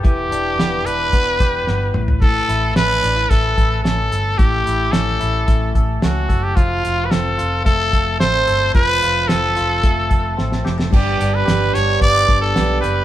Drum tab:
CC |----------------|x---------------|----------------|----------------|
HH |x-x-x-x-x-x-----|--x-x-x-x-x-x-x-|x-x-x-x-x-x-x-x-|x-x-x-x-x-x-x-x-|
SD |----o-------o---|----o-------o---|----o-------o---|----o-------o---|
T2 |--------------o-|----------------|----------------|----------------|
FT |---------------o|----------------|----------------|----------------|
BD |o-------o-o-----|o-------o-o-----|o-------o-o---o-|o-------o-o-----|

CC |----------------|x---------------|
HH |x-x-x-x-x-x-----|--x-x-x-x-x-x-x-|
SD |----o-------oooo|----o-------o---|
T2 |----------------|----------------|
FT |----------------|----------------|
BD |o-------o-o-----|o-------o-o-----|